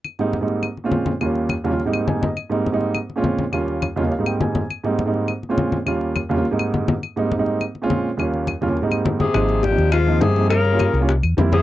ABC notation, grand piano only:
X:1
M:4/4
L:1/16
Q:1/4=206
K:Ab
V:1 name="Grand piano"
z16 | z12 a2 e2 | z16 | z6 e2 f2 g2 a4 |
z16 | z16 | z16 | z16 |
z16 | z16 |]
V:2 name="Grand piano"
z2 [A,,G,B,CE]2 z [A,,G,B,CE]3 z3 [B,,A,CDF]3 z2 | [E,,G,B,DF]4 z2 [E,,G,B,DF] [E,,G,B,DF] z [A,,G,B,CE]6 z | z2 [A,,G,B,CE]2 z [A,,G,B,CE]3 z3 [B,,A,CDF]3 z2 | [E,,G,B,DF]4 z2 [E,,G,B,DF] [E,,G,B,DF] z [A,,G,B,CE]6 z |
z2 [A,,G,B,CE]2 z [A,,G,B,CE]3 z3 [B,,A,CDF]3 z2 | [E,,G,B,DF]4 z2 [E,,G,B,DF] [E,,G,B,DF] z [A,,G,B,CE]6 z | z2 [A,,G,B,CE]2 z [A,,G,B,CE]3 z3 [B,,A,CDF]3 z2 | [E,,G,B,DF]4 z2 [E,,G,B,DF] [E,,G,B,DF] z [A,,G,B,CE]6 z |
[F,B,CE]4 z [F,B,CE]3 z2 [F,B,CE]3 z [F,B,CE]2 | z3 [G,B,DF]3 z [G,B,DF] z4 [G,B,C=E]3 z |]